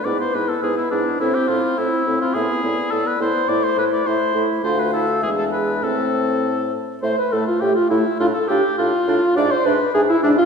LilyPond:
<<
  \new Staff \with { instrumentName = "Flute" } { \time 2/4 \key a \minor \tempo 4 = 104 b'2 | c''2 | e''8 d''4. | c''4 e''8 r8 |
f''4 e''4 | c''4. r8 | e''8 e''8 e''8 e''8 | f''8 f''8 f''8 f''8 |
e''8 e''8 e''8 e''8 | }
  \new Staff \with { instrumentName = "Oboe" } { \time 2/4 \key a \minor d''16 c''16 b'16 a'16 gis'16 e'16 d'8 | e'16 g'16 f'8 e'8. f'16 | gis'4 a'16 b'16 c''8 | d''16 c''16 b'16 d''16 c''8. r16 |
c''16 b'16 a'8 gis'16 a'16 b'8 | a'4. r8 | c''16 b'16 a'16 f'16 g'16 f'16 e'8 | f'16 a'16 g'8 f'4 |
d''16 c''16 b'8 gis'16 e'16 d'16 f'16 | }
  \new Staff \with { instrumentName = "Clarinet" } { \time 2/4 \key a \minor e'8 e'8 e'8 e'8 | e'8 e'8 e'8 e'8 | e'8 e'8 e'8 e'8 | e'8 e'8 e'8 e'8 |
f'8 e'8 d'4 | c'4. r8 | a8 a8 a8 a8 | d'8 d'8 d'8 d'8 |
d'8 d'8 d'8 d'8 | }
  \new Staff \with { instrumentName = "French horn" } { \time 2/4 \key a \minor b8 b8 b8 b8 | c'8 c'8 c'8 c'8 | b8 b8 b8 b8 | a8 a8 a8 a8 |
a4 gis4 | a4. r8 | c''16 b'16 a'16 f'16 g'16 f'16 e'8 | f'16 a'16 g'8 f'4 |
d''16 c''16 b'8 gis'16 e'16 d'16 f'16 | }
  \new Staff \with { instrumentName = "Bassoon" } { \clef bass \time 2/4 \key a \minor gis,8 gis,8 gis,8 gis,8 | a,8 a,8 a,8 a,8 | a,8 a,8 a,8 a,8 | a,8 a,8 a,8 a,8 |
d,4 e,4 | a,4. r8 | a,8 a,8 a,8 a,8 | a,8 a,8 a,8 a,8 |
gis,8 gis,8 gis,8 gis,8 | }
>>